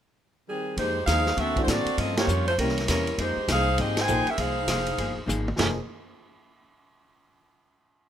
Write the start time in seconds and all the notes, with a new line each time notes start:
0.48 D#3 G3 C4 G#4
0.77 F2 F3 G#3 A#3 D#4 G4 C5, kick, ride
0.81 G#4
1.07 D#2 F3 A#3 D#4 G#4 C5 F5, kick, snare, hi-hat pedal, ride
1.26 snare
1.37 D2 D3 A#3 C4 F#4 A4 E5, kick, ride
1.56 E3 A3 D4 F#4, kick, ride
1.63 C5
1.68 A2 D3 A#3 C4 F#4 A4 D5, kick, snare, hi-hat pedal, ride
1.86 muted upright bass stroke, ride
1.98 G2 F3 A#3 C4 C#4 F4 A4 D#5, kick, ride
2.16 F3 A#3 D#4 F4 G4 C#5, snare, ride
2.27 F2 G2 F3 A#3 C#4, hi-hat pedal
2.47 A3 C#4 F4 C5, ride
2.58 C2 C3 E3 G3 A#3 C#4 E4 G4 A#4, kick, ride
2.69 snare
2.78 snare, ride
2.88 E2 C3 E3 G3 A#3 C#4 E4 A#4, kick, snare, hi-hat pedal, ride
3.07 ride
3.18 F2 F3 G#3 A#3 D#4 G4 G#4 C5, kick, ride
3.37 muted upright bass stroke
3.48 C2 F3 A#3 D#4 G#4 C5 F5, kick, snare, hi-hat pedal, ride
3.78 G#1 F3 A#3 C4 D#4 G4 G#4 D#5, kick, ride
3.97 snare, ride
4.01 D#4 C5 G5 G#5
4.08 A#1 F3 A#3 D#4 G#4, hi-hat pedal
4.27 C#4 G4 A#4 E5, muted upright bass stroke, ride
4.38 C2 F3 A#3 D#4 G#4 C5 F5, kick, ride
4.68 F1 F3 A#3 D#4 G#4, kick, snare, hi-hat pedal, ride
4.87 ride
4.98 G1 F3 A#3 D#4 G#4, kick, ride
5.17 muted upright bass stroke
5.26 G#1 F3 A#3 D#4 G#4, hi-hat pedal, mid tom
5.48 mid tom
5.57 F1 F3 A#3 D#4 G#4, snare, floor tom, crash